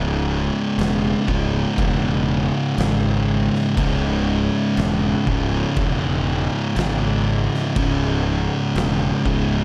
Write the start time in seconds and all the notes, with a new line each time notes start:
Already playing: C#1 C#2 G#2 C#3
0.78 E1, snare, crash
1.25 C#1 C#2 G#2 C#3, kick
1.78 E1, kick, crash
2.75 G#1 C#2 G#2 C#3, crash
2.81 snare
3.55 snare
3.75 C#1 C#2 G#2 C#3, kick, crash
4.77 E1, snare, crash
5.25 C#1 C#2 G#2 C#3, kick
5.76 E1, kick, crash
6.75 G#1 C#2 G#2, snare, crash
6.79 C#3
7.55 snare
7.74 C#1 C#2 G#2 C#3, kick, crash
8.75 E1, snare, crash
9.24 C#1 C#2 G#2 C#3, kick